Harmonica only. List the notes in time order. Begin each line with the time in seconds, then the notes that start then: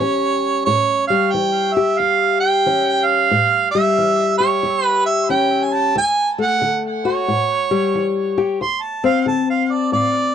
Already playing: C#5
0.65 C#5
1.07 F5
1.32 G5
1.73 E5
1.99 F5
2.40 G5
3.05 F5
3.71 E5
4.38 C#5
4.85 B4
5.05 E5
5.30 G5
5.64 G#5
5.73 A5
5.98 G#5
6.42 F#5
7.05 C#5
8.61 C6
8.82 A5
9.05 F5
9.28 A5
9.50 F5
9.72 D5
9.93 D5